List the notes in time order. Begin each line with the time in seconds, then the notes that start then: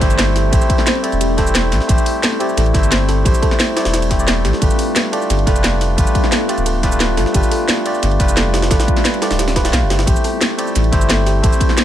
Already playing: G3 C4 E4 G4 A4 C5 D5, downlifter
0.00 G1 A3 C4 E4 G4 C5, kick, snare, closed hi-hat, ride, shaker
0.10 ride, shaker
0.19 A4, snare, closed hi-hat, ride, shaker
0.36 G4, snare, open hi-hat, ride
0.51 A1 A3 C4 E4 G4 A4 C5, kick, closed hi-hat, ride, shaker
0.61 shaker
0.70 kick, closed hi-hat, ride
0.78 snare
0.87 C5, snare, closed hi-hat, ride, shaker
0.95 snare
1.03 A3 C4 E4 G4 A4 D5, closed hi-hat, ride
1.12 E1, ride, shaker
1.21 G4, closed hi-hat, ride, shaker
1.37 A3 C4 E4 G4 A4 C5, kick, snare, closed hi-hat, ride, shaker
1.47 shaker
1.55 C5, snare, closed hi-hat, ride, shaker
1.72 A1, snare, open hi-hat, ride
1.81 snare
1.87 A1 A3 C4 E4 G4 C5, kick, closed hi-hat, ride, shaker
1.98 shaker
2.06 closed hi-hat, open hi-hat
2.23 A4, snare, closed hi-hat, ride, shaker
2.32 snare
2.39 A3 C4 E4 G4 D5, closed hi-hat, ride
2.49 shaker
2.57 A1 A4, snare, closed hi-hat, ride, shaker
2.66 ride
2.74 G1 A3 C4 E4 G4 C5, kick, snare, closed hi-hat, ride, shaker
2.83 ride, shaker
2.92 C5, snare, closed hi-hat, ride, shaker
3.09 A4, snare, open hi-hat, ride
3.24 A1 A3 C4 E4 G4 C5, kick, closed hi-hat, ride, shaker
3.34 shaker
3.42 A4, kick, closed hi-hat, ride
3.51 snare
3.60 C5, snare, closed hi-hat, ride, shaker
3.68 snare
3.76 A3 C4 E4 G4 D5, snare, closed hi-hat, ride
3.85 E1, snare, ride, shaker
3.94 snare, closed hi-hat, ride, shaker
4.02 ride, shaker
4.10 A3 C4 E4 G4 C5, kick, snare, closed hi-hat, ride, shaker
4.19 A3 C4 E4 G4 D5, shaker
4.28 A4, snare, closed hi-hat, ride, shaker
4.45 A1 G4, snare, open hi-hat, ride
4.53 snare
4.60 G1 A3 B3 D4 F4 G4 A4 B4, kick, closed hi-hat, ride, shaker
4.70 shaker
4.79 closed hi-hat, open hi-hat
4.96 B4, snare, closed hi-hat, ride, shaker
5.05 snare
5.12 A3 D4 F4 G4 A4 D5, closed hi-hat, ride
5.22 shaker
5.30 G1 G4, snare, closed hi-hat, ride, shaker
5.39 ride
5.46 F1 A3 D4 F4 G4 A4 B4, kick, snare, closed hi-hat, ride, shaker
5.56 ride, shaker
5.64 D5, snare, closed hi-hat, ride, shaker
5.81 snare, open hi-hat, ride
5.96 G1 A3 D4 F4 G4 B4, kick, closed hi-hat, ride, shaker
6.07 shaker
6.15 kick, closed hi-hat, ride
6.24 snare
6.32 A4, snare, closed hi-hat, ride, shaker
6.41 snare
6.48 A3 D4 F4 G4 D5, closed hi-hat, ride
6.58 D1, ride, shaker
6.66 A4, closed hi-hat, ride, shaker
6.83 A3 D4 F4 G4 B4, kick, snare, closed hi-hat, ride, shaker
6.92 shaker
7.00 B4, snare, closed hi-hat, ride, shaker
7.17 G1 A4, snare, open hi-hat, ride
7.26 snare
7.33 G1 A3 D4 F4 G4 B4, kick, closed hi-hat, ride, shaker
7.43 shaker
7.51 A4, closed hi-hat, open hi-hat
7.68 D5, snare, closed hi-hat, ride, shaker
7.77 snare
7.85 A3 D4 F4 G4 D5, closed hi-hat, ride
7.94 shaker
8.03 G1, snare, closed hi-hat, ride, shaker
8.11 ride
8.19 F1 A3 D4 F4 G4 B4, kick, snare, closed hi-hat, ride, shaker
8.28 ride, shaker
8.37 A4, snare, closed hi-hat, ride, shaker
8.54 G4, snare, open hi-hat, ride
8.62 snare, ride
8.69 G1 A3 D4 F4 G4 A4 B4, kick, snare, closed hi-hat, ride, shaker
8.80 snare, ride, shaker
8.88 kick, closed hi-hat
8.96 snare, ride
9.05 B4, snare, closed hi-hat, ride, shaker
9.14 snare, closed hi-hat
9.21 A3 D4 F4 G4 A4 D5, snare, closed hi-hat, ride
9.31 D1, snare, ride, shaker
9.39 G4, snare, closed hi-hat, ride, shaker
9.48 snare, ride, shaker
9.55 A3 D4 F4 G4 B4, kick, snare, closed hi-hat, ride, shaker
9.64 A3 D4 F4 G4 D5, snare, closed hi-hat, ride, shaker
9.73 B1 F5, snare, closed hi-hat, ride, shaker
9.82 F1
9.90 G1 G4, snare, open hi-hat, ride
9.99 snare, ride
10.05 A1 G3 A3 C4 E4 G4 A4 C5, kick, closed hi-hat, ride, shaker
10.16 shaker
10.24 A4, closed hi-hat, open hi-hat
10.41 E5, snare, closed hi-hat, ride, shaker
10.50 snare
10.57 A3 C4 E4 G4 D5, closed hi-hat, ride
10.67 shaker
10.75 A1, snare, closed hi-hat, ride, shaker
10.84 ride
10.92 G1 A3 C4 E4 G4 C5, kick, snare, closed hi-hat, ride, shaker
11.01 ride, shaker
11.09 A4, snare, closed hi-hat, ride, shaker
11.26 G4, snare, open hi-hat, ride
11.42 A1 A3 C4 E4 G4 A4 C5, kick, closed hi-hat, ride, shaker
11.53 shaker
11.61 kick, closed hi-hat, ride
11.69 snare
11.78 C5, snare, closed hi-hat, ride, shaker